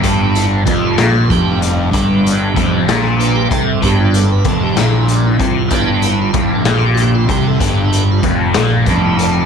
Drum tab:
HH |xxxxxx|xxxxxx|xxxxxx|xxxxxx|
SD |---o--|---o--|---o--|---o--|
BD |o-o-o-|o-o--o|o-o--o|o-o--o|

HH |xxxxxx|
SD |---o--|
BD |o-o-o-|